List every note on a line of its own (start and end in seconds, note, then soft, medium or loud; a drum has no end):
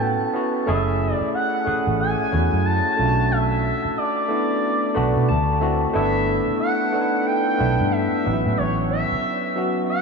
0.00 0.16 A2 medium
0.00 0.33 B3 medium
0.00 0.34 C#4 medium
0.00 0.35 E4 medium
0.00 0.36 F#4 medium
0.00 0.29 A4 medium
0.00 0.30 G5 loud
0.33 0.63 B3 medium
0.33 0.64 C#4 medium
0.33 0.64 E4 medium
0.33 0.65 F#4 medium
0.66 1.12 F#1 medium
0.66 1.57 A3 medium
0.66 1.58 C#4 medium
0.66 1.58 E4 medium
0.66 1.58 G#4 loud
0.66 1.14 E5 medium
1.14 1.29 D5 medium
1.21 muted fingered electric bass stroke soft
1.34 1.95 F#5 loud
1.65 2.26 A3 medium
1.65 2.26 C#4 medium
1.65 2.26 E4 medium
1.65 2.27 G#4 medium
1.65 muted fingered electric bass stroke soft
1.87 2.14 A1 medium
2.00 2.67 G#5 loud
2.31 2.49 E2 medium
2.31 2.92 A3 medium
2.31 2.92 C#4 medium
2.31 2.93 E4 medium
2.31 2.93 F#4 medium
2.53 2.80 F#2 medium
2.65 3.33 A5 loud
2.96 3.70 B1 medium
2.96 4.18 A3 medium
2.96 4.19 C#4 medium
2.96 4.19 D4 medium
2.96 3.06 F4 medium
3.05 4.23 F#4 medium
3.31 3.99 E5 loud
3.85 muted fingered electric bass stroke soft
3.98 5.62 D5 medium
4.28 4.89 A3 medium
4.28 4.90 B3 medium
4.28 4.90 D4 medium
4.28 4.91 E4 medium
4.94 5.12 B1 medium
4.94 5.28 A3 medium
4.94 5.28 B3 medium
4.94 5.28 D4 medium
4.94 5.29 F#4 medium
4.94 5.26 B5 medium
5.16 5.27 B2 loud
5.29 5.85 D2 loud
5.29 5.59 A5 medium
5.60 5.91 A3 medium
5.60 5.91 C4 medium
5.60 5.92 E4 medium
5.60 5.92 F#4 medium
5.60 5.92 E5 medium
5.93 6.39 G1 loud
5.93 6.84 A3 medium
5.93 6.85 B3 medium
5.93 6.85 D4 medium
5.93 6.86 E4 loud
5.93 6.56 E5 loud
6.48 muted fingered electric bass stroke soft
6.60 7.27 F#5 loud
6.92 7.53 A3 medium
6.92 7.53 B3 medium
6.92 7.54 D4 medium
6.92 7.01 D#4 medium
7.01 7.57 E4 medium
7.26 7.93 G5 loud
7.58 7.76 B1 medium
7.58 8.19 A3 medium
7.58 8.19 B3 medium
7.58 8.20 D4 medium
7.58 8.20 E4 medium
7.80 8.07 G2 medium
7.92 8.59 E5 loud
8.24 8.42 A1 medium
8.24 9.46 F#3 medium
8.24 9.46 B3 medium
8.24 9.46 C#4 medium
8.24 8.33 D#4 medium
8.33 9.50 E4 medium
8.46 8.56 A2 loud
8.58 9.03 A1 loud
8.58 8.90 C#5 loud
8.91 9.85 E5 loud
9.12 muted fingered electric bass stroke soft
9.55 10.02 F#3 medium
9.55 10.02 B3 medium
9.55 10.02 C#4 medium
9.55 10.02 F#4 medium
9.90 10.02 F#5 medium